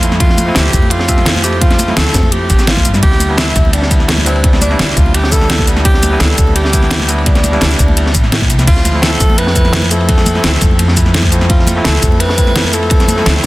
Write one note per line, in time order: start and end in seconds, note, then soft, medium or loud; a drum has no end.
0.00 0.54 F2 medium
0.00 0.44 F3 medium
0.00 0.45 A3 medium
0.00 0.45 C4 medium
0.00 0.46 E4 loud
0.00 0.12 F4 loud
0.00 closed hi-hat medium
0.00 ride medium
0.00 shaker medium
0.12 snare soft
0.20 0.57 F4 loud
0.20 kick loud
0.20 closed hi-hat medium
0.20 ride medium
0.30 snare soft
0.38 closed hi-hat medium
0.38 ride medium
0.38 high conga loud
0.38 shaker medium
0.46 1.06 F3 loud
0.46 1.06 A3 medium
0.46 1.07 C4 medium
0.46 1.07 E4 loud
0.55 0.72 D2 medium
0.55 0.92 G4 loud
0.55 snare loud
0.55 closed hi-hat medium
0.55 ride loud
0.73 1.95 F2 medium
0.73 kick loud
0.73 closed hi-hat medium
0.73 ride medium
0.73 shaker medium
0.82 high conga medium
0.90 1.43 F4 loud
0.90 closed hi-hat medium
0.90 ride medium
0.99 snare soft
1.08 1.41 F3 medium
1.08 1.42 A3 medium
1.08 1.42 C4 medium
1.08 1.42 E5 medium
1.08 kick medium
1.08 closed hi-hat medium
1.08 ride medium
1.08 shaker medium
1.18 snare soft
1.26 snare loud
1.26 closed hi-hat medium
1.26 ride medium
1.35 ride soft
1.35 high conga medium
1.42 1.85 F3 medium
1.42 1.86 A3 medium
1.42 1.86 C4 medium
1.42 1.87 E4 loud
1.42 1.63 G4 loud
1.42 closed hi-hat medium
1.42 ride medium
1.42 shaker medium
1.52 ride soft
1.61 1.96 F4 loud
1.61 kick loud
1.61 closed hi-hat medium
1.61 ride medium
1.70 snare soft
1.70 closed hi-hat soft
1.79 closed hi-hat medium
1.79 ride medium
1.79 high conga medium
1.79 shaker medium
1.87 2.47 F3 medium
1.87 2.47 A3 medium
1.87 2.48 C4 medium
1.87 2.48 E4 loud
1.87 snare soft
1.97 2.13 D2 medium
1.97 2.33 A4 loud
1.97 snare loud
1.97 closed hi-hat medium
1.97 ride medium
2.05 snare soft
2.14 2.49 F2 medium
2.14 kick loud
2.14 snare loud
2.14 closed hi-hat medium
2.14 ride medium
2.14 shaker medium
2.23 high conga medium
2.32 2.69 G4 loud
2.32 closed hi-hat medium
2.32 ride medium
2.50 2.84 A1 loud
2.50 kick medium
2.50 closed hi-hat medium
2.50 ride medium
2.50 shaker medium
2.59 snare soft
2.59 shaker soft
2.67 2.94 F4 loud
2.67 snare loud
2.67 closed hi-hat medium
2.67 ride medium
2.77 kick medium
2.77 ride soft
2.77 high conga loud
2.84 3.01 G2 medium
2.84 2.90 F3 medium
2.84 2.90 A3 medium
2.84 2.90 C4 medium
2.84 2.90 E4 medium
2.84 closed hi-hat medium
2.84 ride medium
2.84 shaker medium
2.94 3.27 G3 medium
2.94 3.27 B3 medium
2.94 3.27 D4 medium
2.94 3.28 E4 medium
2.94 snare soft
2.94 shaker soft
3.03 3.54 D2 loud
3.03 3.35 G4 loud
3.03 kick loud
3.03 closed hi-hat medium
3.03 ride medium
3.12 snare soft
3.20 closed hi-hat medium
3.20 ride medium
3.20 high conga medium
3.20 shaker medium
3.28 3.88 G3 loud
3.28 3.89 B3 medium
3.28 3.89 D4 medium
3.28 3.90 E4 loud
3.38 3.71 E4 loud
3.38 snare loud
3.38 closed hi-hat medium
3.38 ride medium
3.56 4.78 D2 medium
3.56 kick loud
3.56 closed hi-hat medium
3.56 ride medium
3.56 shaker medium
3.65 high conga medium
3.73 3.90 D4 medium
3.73 closed hi-hat medium
3.73 ride medium
3.82 snare medium
3.90 4.24 G3 medium
3.90 4.24 B3 medium
3.90 4.24 D4 medium
3.90 4.25 E4 medium
3.90 kick medium
3.90 closed hi-hat medium
3.90 ride medium
3.90 shaker medium
4.00 snare soft
4.08 snare loud
4.08 closed hi-hat medium
4.08 ride medium
4.17 ride soft
4.17 high conga medium
4.25 4.68 G3 medium
4.25 4.59 C4 loud
4.25 4.69 D4 medium
4.25 4.69 E4 loud
4.25 4.68 B4 medium
4.25 closed hi-hat medium
4.25 ride medium
4.25 shaker medium
4.36 ride soft
4.44 kick loud
4.44 closed hi-hat medium
4.44 ride medium
4.53 snare soft
4.61 4.98 D4 loud
4.61 closed hi-hat medium
4.61 ride medium
4.61 high conga loud
4.61 shaker medium
4.69 5.29 G3 loud
4.69 5.30 B3 medium
4.69 5.30 D4 medium
4.69 5.31 E4 loud
4.69 snare soft
4.79 4.95 D2 medium
4.79 snare loud
4.79 closed hi-hat medium
4.79 ride medium
4.89 snare soft
4.96 6.19 D2 medium
4.96 5.16 F4 loud
4.96 kick loud
4.96 closed hi-hat medium
4.96 ride medium
4.96 shaker medium
5.06 high conga medium
5.14 5.33 G4 loud
5.14 closed hi-hat medium
5.14 ride medium
5.24 snare medium
5.31 5.65 G3 medium
5.31 5.65 B3 medium
5.31 5.65 D4 medium
5.31 5.66 E4 medium
5.31 5.67 A4 loud
5.31 kick medium
5.31 closed hi-hat medium
5.31 ride medium
5.31 shaker medium
5.41 snare soft
5.50 snare loud
5.50 closed hi-hat medium
5.50 ride medium
5.59 kick medium
5.59 ride soft
5.59 high conga medium
5.66 6.09 G3 medium
5.66 6.09 B3 medium
5.66 6.10 D4 medium
5.66 6.10 E4 loud
5.66 closed hi-hat medium
5.66 ride medium
5.66 shaker medium
5.76 snare soft
5.85 6.22 G4 loud
5.85 kick loud
5.85 closed hi-hat loud
5.85 ride medium
5.94 snare soft
6.03 closed hi-hat medium
6.03 ride medium
6.03 high conga medium
6.03 shaker medium
6.11 6.71 G3 medium
6.11 6.71 B3 medium
6.11 6.71 D4 medium
6.11 6.72 E4 loud
6.20 6.36 D2 medium
6.20 6.55 A4 loud
6.20 snare loud
6.20 closed hi-hat medium
6.20 ride medium
6.38 7.60 D2 medium
6.38 kick loud
6.38 closed hi-hat medium
6.38 ride medium
6.38 shaker medium
6.47 high conga medium
6.56 7.22 G4 loud
6.56 closed hi-hat medium
6.56 ride medium
6.65 snare medium
6.73 7.06 G3 medium
6.73 7.06 B3 medium
6.73 7.07 D4 medium
6.73 7.07 E4 medium
6.73 kick medium
6.73 closed hi-hat medium
6.73 ride medium
6.73 shaker medium
6.82 snare soft
6.90 snare loud
6.90 closed hi-hat loud
6.90 ride medium
7.00 ride soft
7.00 high conga medium
7.07 7.50 G3 medium
7.07 7.51 B3 medium
7.07 7.51 D4 medium
7.07 7.51 E4 loud
7.07 closed hi-hat medium
7.07 ride medium
7.07 shaker medium
7.18 ride soft
7.26 8.19 D4 medium
7.26 kick loud
7.26 closed hi-hat loud
7.26 ride medium
7.35 snare soft
7.35 closed hi-hat soft
7.43 closed hi-hat medium
7.43 ride medium
7.43 high conga medium
7.43 shaker medium
7.52 8.12 G3 loud
7.52 8.12 B3 medium
7.52 8.13 D4 medium
7.52 8.13 E4 loud
7.52 snare soft
7.61 7.77 D2 medium
7.61 snare loud
7.61 closed hi-hat loud
7.61 ride medium
7.71 snare medium
7.71 closed hi-hat soft
7.71 shaker soft
7.79 8.16 D2 medium
7.79 kick loud
7.79 closed hi-hat medium
7.79 ride medium
7.79 shaker medium
7.88 high conga medium
7.97 closed hi-hat loud
7.97 ride medium
8.06 snare soft
8.14 8.50 A1 medium
8.14 kick medium
8.14 closed hi-hat medium
8.14 ride medium
8.14 shaker medium
8.24 snare soft
8.32 snare loud
8.32 closed hi-hat loud
8.32 ride medium
8.41 kick medium
8.41 ride soft
8.41 high conga medium
8.49 8.66 C2 loud
8.49 8.54 G3 medium
8.49 8.54 B3 medium
8.49 8.55 D4 medium
8.49 8.55 E4 medium
8.49 closed hi-hat medium
8.49 ride medium
8.49 shaker medium
8.58 8.92 F3 medium
8.58 8.92 A3 medium
8.58 8.92 C4 medium
8.58 8.92 E4 medium
8.58 snare soft
8.58 closed hi-hat soft
8.58 shaker soft
8.67 9.19 D2 medium
8.67 9.04 F4 loud
8.67 kick loud
8.67 closed hi-hat loud
8.67 crash medium
8.67 ride medium
8.76 snare soft
8.85 closed hi-hat medium
8.85 ride medium
8.85 high conga medium
8.85 shaker medium
8.93 9.53 F3 loud
8.93 9.53 A3 medium
8.93 9.54 C4 medium
8.93 9.54 E4 loud
9.02 9.39 A4 loud
9.02 snare loud
9.02 closed hi-hat medium
9.02 ride medium
9.20 10.43 F2 medium
9.20 kick loud
9.20 closed hi-hat medium
9.20 ride medium
9.20 shaker medium
9.30 high conga medium
9.38 9.90 B4 loud
9.38 closed hi-hat medium
9.38 ride medium
9.47 snare medium
9.55 9.89 F3 medium
9.55 9.89 A3 medium
9.55 9.89 C4 medium
9.55 9.89 E4 medium
9.55 kick medium
9.55 closed hi-hat medium
9.55 ride medium
9.55 shaker medium
9.65 snare soft
9.73 snare loud
9.73 closed hi-hat loud
9.73 ride medium
9.82 ride soft
9.82 high conga medium
9.90 10.33 F3 medium
9.90 10.33 A3 medium
9.90 10.33 C4 medium
9.90 10.34 E4 loud
9.90 10.93 A4 loud
9.90 closed hi-hat medium
9.90 ride medium
9.90 shaker medium
10.01 ride soft
10.09 kick loud
10.09 closed hi-hat medium
10.09 ride medium
10.18 snare soft
10.26 closed hi-hat medium
10.26 ride medium
10.26 high conga loud
10.26 shaker medium
10.34 10.94 F3 loud
10.34 10.95 A3 medium
10.34 10.95 C4 medium
10.34 10.95 E4 loud
10.34 snare soft
10.44 10.60 D2 medium
10.44 snare loud
10.44 closed hi-hat medium
10.44 ride medium
10.53 snare medium
10.61 11.84 F2 medium
10.61 kick loud
10.61 closed hi-hat medium
10.61 ride medium
10.61 shaker medium
10.71 high conga medium
10.79 closed hi-hat medium
10.79 ride medium
10.88 snare soft
10.96 11.30 F3 medium
10.96 11.30 A3 medium
10.96 11.30 C4 medium
10.96 11.30 E4 medium
10.96 kick medium
10.96 closed hi-hat medium
10.96 ride medium
10.96 shaker medium
11.06 snare soft
11.14 snare loud
11.14 closed hi-hat loud
11.14 ride medium
11.22 kick medium
11.22 ride soft
11.22 high conga loud
11.31 11.74 F3 medium
11.31 11.74 A3 medium
11.31 11.75 C4 medium
11.31 11.75 E4 loud
11.31 closed hi-hat medium
11.31 ride medium
11.31 shaker medium
11.41 snare soft
11.49 11.83 F4 medium
11.49 kick loud
11.49 closed hi-hat medium
11.49 ride medium
11.59 snare soft
11.67 closed hi-hat medium
11.67 ride medium
11.67 high conga loud
11.67 shaker medium
11.75 12.35 F3 medium
11.75 12.36 A3 medium
11.75 12.36 C4 medium
11.75 12.37 E4 loud
11.85 12.01 D2 medium
11.85 12.22 A4 loud
11.85 snare loud
11.85 closed hi-hat medium
11.85 ride loud
12.02 13.25 F2 medium
12.02 kick loud
12.02 closed hi-hat medium
12.02 ride medium
12.02 shaker medium
12.12 high conga medium
12.20 12.75 B4 loud
12.20 closed hi-hat medium
12.20 ride medium
12.29 snare medium
12.37 12.71 F3 medium
12.37 12.71 A3 medium
12.37 12.71 C4 medium
12.37 12.72 E4 medium
12.37 kick medium
12.37 closed hi-hat medium
12.37 ride medium
12.37 shaker medium
12.47 snare soft
12.56 snare loud
12.56 closed hi-hat medium
12.56 ride medium
12.64 ride soft
12.64 high conga medium
12.72 13.15 F3 medium
12.72 13.15 A3 medium
12.72 13.16 C4 medium
12.72 13.16 E4 loud
12.72 13.46 A4 loud
12.72 closed hi-hat medium
12.72 ride medium
12.72 shaker medium
12.83 ride soft
12.90 kick loud
12.90 closed hi-hat medium
12.90 ride medium
13.00 snare soft
13.00 closed hi-hat soft
13.08 closed hi-hat medium
13.08 ride medium
13.08 high conga loud
13.08 shaker medium
13.16 13.46 F3 loud
13.16 13.46 A3 medium
13.16 13.46 C4 medium
13.16 13.46 E4 loud
13.16 snare soft
13.26 13.42 D2 medium
13.26 snare loud
13.26 closed hi-hat medium
13.26 ride medium
13.36 snare soft